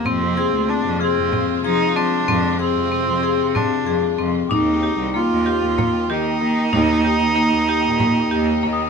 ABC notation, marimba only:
X:1
M:7/8
L:1/8
Q:1/4=94
K:Fdor
V:1 name="Marimba"
C A C A C A C | C A C A C A C | E G B, G B, G B, | E G B, G B, G B, |]